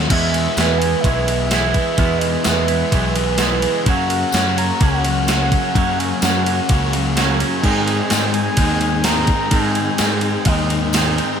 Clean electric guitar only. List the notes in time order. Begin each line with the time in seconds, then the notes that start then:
Already playing: F#3 A3 D#4 F#4
0.09 E3 G#3 B3 E4
0.57 E3 G#3 B3 E4
0.80 G#3 B3 E4
1.04 E3 G#3 B3 E4
1.51 E3 G#3 B3 E4
1.75 G#3 B3 E4
1.97 E3 G#3 B3 E4
2.45 E3 G#3 B3 E4
2.68 G#3 B3 E4
2.92 E3 G#3 B3 E4
3.38 E3 G#3 B3 E4
3.62 G#3 B3 E4
3.85 F#2 C#3 F#3 A#3 C#4
4.34 C#3 F#3 A#3 C#4
4.56 F#3 A#3 C#4
4.80 C#3 F#3 A#3 C#4
5.27 F#2 C#3 F#3 A#3 C#4
5.51 F#3 A#3 C#4
5.74 F#2 C#3 F#3 A#3 C#4
6.21 C#3 F#3 A#3 C#4
6.45 F#3 A#3 C#4
6.69 C#3 F#3 A#3 C#4
7.16 F#2 C#3 F#3 A#3 C#4
7.40 F#3 A#3 C#4
7.63 G#2 D#3 G#3 C4 D#4
8.11 D#3 G#3 C4 D#4
8.35 G#3 C4 D#4
8.59 D#3 G#3 C4 D#4
9.05 G#2 D#3 G#3 C4 D#4
9.28 G#3 C4 D#4
9.51 G#2 D#3 G#3 C4 D#4
9.99 D#3 G#3 C4 D#4
10.22 G#3 C4 D#4
10.46 D#3 G#3 C4 D#4
10.93 G#2 D#3 G#3 C4 D#4
11.17 G#3 C4 D#4